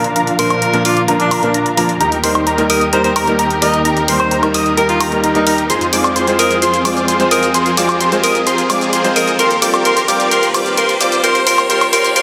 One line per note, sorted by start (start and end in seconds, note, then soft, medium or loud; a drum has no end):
0.00 1.97 A#2 medium
0.00 1.97 F3 medium
0.00 0.12 D4 medium
0.00 1.97 D4 medium
0.00 0.12 F4 medium
0.00 0.12 A#4 medium
0.00 1.97 A#4 medium
0.00 1.97 F5 medium
0.00 0.12 A#5 medium
0.00 riser medium
0.04 closed hi-hat soft
0.16 0.33 D4 medium
0.16 0.33 F4 medium
0.16 0.33 A#4 loud
0.16 0.32 A#5 loud
0.16 closed hi-hat medium
0.27 closed hi-hat soft
0.38 0.71 A#2 medium
0.38 0.71 F3 medium
0.38 0.71 A#3 medium
0.38 0.59 D4 medium
0.38 0.71 D4 medium
0.38 0.59 F4 medium
0.38 0.83 A#4 medium
0.38 0.71 A#4 medium
0.38 0.59 C5 medium
0.38 0.59 C6 medium
0.38 open hi-hat loud
0.50 closed hi-hat soft
0.50 high woodblock medium
0.62 0.82 D4 medium
0.62 0.82 F4 medium
0.62 0.82 A#4 medium
0.62 0.82 A#5 medium
0.62 closed hi-hat medium
0.73 1.05 A#2 medium
0.73 1.05 F3 medium
0.73 1.05 A#3 medium
0.73 1.06 D4 medium
0.73 1.06 A#4 loud
0.73 closed hi-hat soft
0.85 1.02 D4 medium
0.85 1.02 F4 medium
0.85 1.03 F4 medium
0.85 1.02 D5 loud
0.85 1.02 D6 loud
0.85 open hi-hat loud
0.97 closed hi-hat soft
1.08 1.40 A#2 medium
1.08 1.40 F3 medium
1.08 1.40 A#3 medium
1.08 1.25 D4 medium
1.08 1.40 D4 medium
1.08 1.25 F4 medium
1.08 1.25 A#4 medium
1.08 1.40 A#4 medium
1.08 1.25 A#5 medium
1.08 closed hi-hat medium
1.20 1.54 D4 medium
1.20 closed hi-hat soft
1.31 1.51 D4 loud
1.31 1.51 F4 medium
1.31 1.51 A#4 loud
1.31 1.51 A#5 loud
1.31 open hi-hat loud
1.31 high woodblock medium
1.42 1.52 A#2 medium
1.42 1.52 F3 medium
1.42 1.52 A#3 medium
1.42 1.52 D4 medium
1.42 1.52 A#4 medium
1.42 closed hi-hat soft
1.54 1.71 D4 medium
1.54 1.71 F4 medium
1.54 1.71 A#4 medium
1.54 1.71 A#5 medium
1.54 closed hi-hat medium
1.66 closed hi-hat soft
1.77 1.86 F3 medium
1.77 1.86 A#3 medium
1.77 1.97 D4 medium
1.77 1.87 D4 medium
1.77 1.97 F4 medium
1.77 1.97 A#4 medium
1.77 1.87 A#4 medium
1.77 1.97 A#5 medium
1.77 open hi-hat loud
1.89 closed hi-hat soft
2.00 5.66 D#2 medium
2.00 5.66 D#3 medium
2.00 5.66 A#3 medium
2.00 2.17 D#4 medium
2.00 2.17 G4 medium
2.00 5.66 G4 medium
2.00 5.66 A#4 medium
2.00 2.17 A#4 loud
2.00 2.17 A#5 loud
2.00 closed hi-hat medium
2.12 closed hi-hat soft
2.23 2.55 G3 medium
2.23 2.55 A#3 medium
2.23 2.44 D#4 medium
2.23 2.56 D#4 medium
2.23 2.44 G4 medium
2.23 2.56 A#4 medium
2.23 2.44 C5 medium
2.23 2.44 C6 medium
2.23 open hi-hat loud
2.35 closed hi-hat soft
2.35 high woodblock medium
2.47 2.66 D#4 medium
2.47 2.66 G4 medium
2.47 2.66 A#4 medium
2.47 2.66 A#5 medium
2.47 closed hi-hat medium
2.58 2.90 G3 medium
2.58 2.90 A#3 medium
2.58 2.90 D#4 medium
2.58 2.90 A#4 loud
2.58 closed hi-hat soft
2.70 2.86 D#4 medium
2.70 2.86 G4 medium
2.70 2.87 A#4 medium
2.70 2.86 D#5 loud
2.70 2.86 D#6 loud
2.70 open hi-hat loud
2.81 closed hi-hat soft
2.92 3.24 G3 medium
2.92 3.25 A#3 medium
2.92 3.09 D#4 medium
2.92 3.25 D#4 medium
2.92 3.09 G4 medium
2.92 3.09 A#4 medium
2.92 3.25 A#4 medium
2.92 3.00 C5 medium
2.92 3.09 A#5 medium
2.92 closed hi-hat medium
3.04 3.12 C5 medium
3.04 closed hi-hat soft
3.16 3.36 D#4 loud
3.16 3.36 G4 medium
3.16 3.33 A#4 medium
3.16 3.36 A#4 loud
3.16 3.36 A#5 loud
3.16 open hi-hat loud
3.16 high woodblock medium
3.27 3.36 G3 medium
3.27 3.36 A#3 medium
3.27 3.37 D#4 medium
3.27 3.37 A#4 medium
3.27 closed hi-hat soft
3.39 3.56 D#4 medium
3.39 3.56 G4 medium
3.39 3.56 A#4 medium
3.39 3.56 A#5 medium
3.39 closed hi-hat medium
3.50 closed hi-hat soft
3.61 3.71 G3 medium
3.61 3.71 A#3 medium
3.61 3.82 D#4 medium
3.61 3.71 D#4 medium
3.61 3.82 G4 medium
3.61 3.82 A#4 medium
3.61 3.71 A#4 loud
3.61 3.79 D#5 medium
3.61 3.82 A#5 medium
3.61 open hi-hat loud
3.74 closed hi-hat soft
3.85 4.02 D#4 medium
3.85 4.02 G4 medium
3.85 4.02 A#4 loud
3.85 4.02 A#5 medium
3.85 closed hi-hat medium
3.97 closed hi-hat soft
4.08 4.40 G3 medium
4.08 4.40 A#3 medium
4.08 4.29 D#4 medium
4.08 4.40 D#4 medium
4.08 4.29 G4 medium
4.08 4.40 A#4 medium
4.08 4.29 C5 medium
4.08 4.29 C6 medium
4.08 open hi-hat loud
4.20 4.37 C5 medium
4.20 closed hi-hat soft
4.20 high woodblock medium
4.31 4.51 D#4 medium
4.31 4.51 G4 medium
4.31 4.51 A#4 medium
4.31 4.51 A#5 medium
4.31 closed hi-hat medium
4.42 4.74 G3 medium
4.42 4.75 A#3 medium
4.42 4.75 D#4 medium
4.42 4.75 A#4 loud
4.42 closed hi-hat soft
4.42 high woodblock medium
4.54 4.71 D#4 medium
4.54 4.71 G4 medium
4.54 4.71 D#5 loud
4.54 4.71 D#6 loud
4.54 open hi-hat loud
4.66 closed hi-hat soft
4.77 5.09 G3 medium
4.77 5.09 A#3 medium
4.77 4.94 D#4 medium
4.77 5.09 D#4 medium
4.77 4.94 G4 medium
4.77 4.94 A#4 medium
4.77 4.87 A#4 medium
4.77 5.10 A#4 medium
4.77 4.94 A#5 loud
4.77 closed hi-hat medium
4.89 5.06 F4 medium
4.89 closed hi-hat soft
5.00 5.20 D#4 medium
5.00 5.20 G4 medium
5.00 5.20 A#4 loud
5.00 5.20 A#5 loud
5.00 open hi-hat loud
5.00 high woodblock medium
5.11 5.32 G3 medium
5.11 5.32 A#3 medium
5.11 5.32 D#4 medium
5.11 5.33 A#4 medium
5.11 closed hi-hat soft
5.24 5.40 D#4 medium
5.24 5.40 G4 medium
5.24 5.40 A#4 medium
5.24 5.40 A#5 medium
5.24 closed hi-hat medium
5.34 5.49 G3 medium
5.34 5.49 A#3 medium
5.34 5.50 D#4 medium
5.34 5.43 D#4 medium
5.34 5.50 A#4 medium
5.34 closed hi-hat soft
5.47 5.66 D#4 medium
5.47 5.54 D#4 medium
5.47 5.66 G4 medium
5.47 5.66 A#4 medium
5.47 5.66 A#5 medium
5.47 open hi-hat loud
5.58 closed hi-hat soft
5.70 9.35 F2 medium
5.70 9.35 F3 medium
5.70 9.35 C4 medium
5.70 5.86 F4 medium
5.70 5.86 G#4 medium
5.70 9.35 G#4 medium
5.70 7.53 C5 medium
5.70 5.86 C5 medium
5.70 5.86 C6 medium
5.70 closed hi-hat medium
5.70 shaker soft
5.81 closed hi-hat soft
5.81 shaker soft
5.92 6.24 G#3 medium
5.92 6.25 C4 medium
5.92 6.13 F4 medium
5.92 6.25 F4 medium
5.92 6.13 G#4 medium
5.92 6.25 C5 medium
5.92 6.13 D5 medium
5.92 6.13 D6 medium
5.92 open hi-hat loud
5.92 shaker medium
6.04 closed hi-hat soft
6.04 high woodblock medium
6.04 shaker soft
6.16 6.35 F4 medium
6.16 6.36 G#4 medium
6.16 6.35 C5 medium
6.16 6.36 C6 medium
6.16 closed hi-hat medium
6.16 shaker soft
6.27 6.59 G#3 medium
6.27 6.59 C4 medium
6.27 6.59 F4 medium
6.27 6.60 C5 medium
6.27 closed hi-hat soft
6.27 shaker soft
6.39 6.56 F4 medium
6.39 6.56 G#4 medium
6.39 6.56 A#4 medium
6.39 6.56 D#5 medium
6.39 6.56 D#6 medium
6.39 open hi-hat loud
6.39 shaker medium
6.51 closed hi-hat soft
6.51 shaker soft
6.62 6.79 F4 medium
6.62 6.79 G#4 medium
6.62 6.79 C5 medium
6.62 6.79 C6 loud
6.62 closed hi-hat medium
6.62 shaker soft
6.74 closed hi-hat soft
6.74 shaker soft
6.85 7.17 G#3 medium
6.85 7.17 C4 medium
6.85 7.05 F4 medium
6.85 7.17 F4 medium
6.85 7.05 G#4 medium
6.85 7.17 C5 medium
6.85 7.05 D5 medium
6.85 7.05 D6 medium
6.85 open hi-hat loud
6.85 high woodblock medium
6.85 shaker medium
6.97 closed hi-hat soft
6.97 shaker soft
7.08 7.28 F4 medium
7.08 7.28 G#4 medium
7.08 7.28 C5 medium
7.08 7.28 C6 medium
7.08 closed hi-hat medium
7.08 shaker soft
7.19 7.51 G#3 medium
7.19 7.52 C4 medium
7.19 7.52 F4 medium
7.19 7.52 C5 loud
7.19 closed hi-hat soft
7.19 shaker soft
7.31 7.48 F4 medium
7.31 7.48 G#4 medium
7.31 7.49 A#4 medium
7.31 7.48 D#5 loud
7.31 7.48 D#6 medium
7.31 open hi-hat loud
7.31 shaker medium
7.43 closed hi-hat soft
7.43 shaker soft
7.54 7.71 F4 medium
7.54 7.71 G#4 medium
7.54 12.22 A#4 medium
7.54 7.71 C5 medium
7.54 7.71 C6 medium
7.54 closed hi-hat medium
7.54 shaker soft
7.66 closed hi-hat soft
7.66 shaker soft
7.77 8.09 G#3 medium
7.77 8.09 C4 medium
7.77 7.98 F4 medium
7.77 8.09 F4 medium
7.77 7.98 G#4 medium
7.77 8.10 C5 medium
7.77 7.98 D5 medium
7.77 7.98 D6 medium
7.77 open hi-hat loud
7.77 shaker medium
7.89 closed hi-hat soft
7.89 high woodblock medium
7.89 shaker soft
8.01 8.20 F4 medium
8.01 8.20 G#4 medium
8.01 8.20 C5 medium
8.01 8.20 C6 medium
8.01 closed hi-hat medium
8.01 shaker soft
8.12 8.44 G#3 medium
8.12 8.44 C4 medium
8.12 8.44 F4 medium
8.12 8.44 C5 loud
8.12 closed hi-hat soft
8.12 shaker soft
8.24 8.40 F4 medium
8.24 8.40 G#4 medium
8.24 8.41 A#4 medium
8.24 8.40 D#5 medium
8.24 8.40 D#6 loud
8.24 open hi-hat loud
8.24 shaker medium
8.35 closed hi-hat soft
8.35 shaker soft
8.47 8.63 F4 medium
8.47 8.63 G#4 medium
8.47 8.63 C5 loud
8.47 8.63 C6 loud
8.47 closed hi-hat medium
8.47 shaker soft
8.58 closed hi-hat soft
8.58 shaker soft
8.69 9.01 G#3 medium
8.69 9.02 C4 medium
8.69 8.90 F4 medium
8.69 9.02 F4 medium
8.69 8.90 G#4 medium
8.69 9.02 C5 medium
8.69 8.90 D5 medium
8.69 8.90 D6 medium
8.69 open hi-hat loud
8.69 high woodblock medium
8.69 shaker medium
8.81 closed hi-hat soft
8.81 shaker soft
8.93 9.13 F4 medium
8.93 9.13 G#4 medium
8.93 9.13 C5 medium
8.93 9.12 C6 medium
8.93 closed hi-hat medium
8.93 shaker soft
9.04 9.36 G#3 medium
9.04 9.36 C4 medium
9.04 9.36 F4 medium
9.04 9.37 C5 loud
9.04 closed hi-hat soft
9.04 shaker soft
9.16 9.33 F4 medium
9.16 9.32 G#4 medium
9.16 9.33 A#4 medium
9.16 9.32 D#5 loud
9.16 9.33 D#6 medium
9.16 open hi-hat medium
9.16 shaker medium
9.28 closed hi-hat soft
9.28 shaker soft
9.39 12.22 D#2 medium
9.39 12.22 D#3 medium
9.39 12.22 A#3 medium
9.39 9.56 F4 medium
9.39 12.22 G4 medium
9.39 9.56 G4 medium
9.39 9.56 A#4 medium
9.39 9.56 C5 loud
9.39 9.56 C6 loud
9.39 closed hi-hat medium
9.39 shaker soft
9.51 closed hi-hat soft
9.51 shaker soft
9.61 9.83 G3 medium
9.61 9.83 C4 medium
9.61 9.82 F4 medium
9.61 9.83 F4 medium
9.61 9.82 G4 medium
9.61 9.84 C5 medium
9.61 9.82 D5 medium
9.61 9.82 D6 medium
9.61 open hi-hat loud
9.61 shaker medium
9.74 closed hi-hat soft
9.74 high woodblock medium
9.74 shaker soft
9.85 10.02 F4 medium
9.85 10.02 G4 medium
9.85 10.02 A#4 medium
9.85 10.02 C5 medium
9.85 10.02 C6 loud
9.85 closed hi-hat medium
9.85 shaker soft
9.97 closed hi-hat soft
9.97 shaker soft
10.08 10.29 G3 medium
10.08 10.29 C4 medium
10.08 10.29 F4 medium
10.08 10.30 F4 medium
10.08 10.29 G4 medium
10.08 10.30 C5 medium
10.08 10.29 D5 medium
10.08 10.29 D6 medium
10.08 open hi-hat loud
10.08 shaker medium
10.20 closed hi-hat soft
10.20 shaker soft
10.31 10.48 F4 medium
10.31 10.48 G4 medium
10.31 10.49 A#4 medium
10.31 10.48 C5 loud
10.31 10.48 C6 loud
10.31 closed hi-hat medium
10.31 shaker soft
10.43 closed hi-hat soft
10.43 shaker soft
10.54 10.75 G3 medium
10.54 10.75 C4 medium
10.54 10.75 F4 medium
10.54 10.76 F4 medium
10.54 10.75 G4 medium
10.54 10.76 C5 medium
10.54 10.75 D5 medium
10.54 10.75 D6 medium
10.54 open hi-hat loud
10.54 high woodblock medium
10.54 shaker medium
10.66 closed hi-hat soft
10.66 shaker soft
10.77 10.94 F4 medium
10.77 10.94 G4 medium
10.77 10.95 A#4 medium
10.77 10.94 C5 medium
10.77 10.94 C6 medium
10.77 closed hi-hat medium
10.77 shaker soft
10.89 closed hi-hat soft
10.89 shaker soft
11.00 11.21 G3 medium
11.00 11.22 C4 medium
11.00 11.21 F4 medium
11.00 11.22 F4 medium
11.00 11.21 G4 medium
11.00 11.22 C5 medium
11.00 11.21 D5 medium
11.00 11.21 D6 medium
11.00 open hi-hat medium
11.00 shaker medium
11.12 closed hi-hat soft
11.12 shaker soft
11.23 11.44 G3 medium
11.23 11.45 C4 medium
11.23 11.40 F4 medium
11.23 11.45 F4 medium
11.23 11.40 G4 medium
11.23 11.41 A#4 medium
11.23 11.40 C5 loud
11.23 11.45 C5 medium
11.23 11.40 C6 loud
11.23 closed hi-hat medium
11.23 shaker soft
11.35 closed hi-hat soft
11.35 shaker soft
11.46 11.67 G3 medium
11.46 11.68 C4 medium
11.46 11.63 F4 medium
11.46 11.68 F4 medium
11.46 11.63 G4 medium
11.46 11.64 A#4 medium
11.46 11.63 C5 medium
11.46 11.68 C5 medium
11.46 11.63 C6 loud
11.46 open hi-hat loud
11.46 shaker medium
11.58 closed hi-hat soft
11.58 high woodblock medium
11.58 shaker soft
11.69 11.91 G3 medium
11.69 11.91 C4 medium
11.69 11.91 F4 medium
11.69 11.86 F4 medium
11.69 11.86 G4 medium
11.69 11.87 A#4 medium
11.69 11.86 C5 loud
11.69 11.91 C5 medium
11.69 11.86 C6 loud
11.69 closed hi-hat medium
11.69 shaker soft
11.81 closed hi-hat soft
11.81 high woodblock medium
11.81 shaker soft
11.92 12.14 G3 medium
11.92 12.14 C4 medium
11.92 12.09 F4 medium
11.92 12.14 F4 medium
11.92 12.09 G4 medium
11.92 12.10 A#4 medium
11.92 12.09 C5 loud
11.92 12.14 C5 medium
11.92 12.09 C6 loud
11.92 open hi-hat loud
11.92 shaker medium
12.04 closed hi-hat soft
12.04 shaker soft
12.15 12.22 G3 medium
12.15 12.22 C4 medium
12.15 12.22 F4 medium
12.15 12.22 G4 medium
12.15 12.22 A#4 loud
12.15 12.22 C5 loud
12.15 12.22 C5 medium
12.15 12.22 C6 loud
12.15 closed hi-hat medium
12.15 shaker soft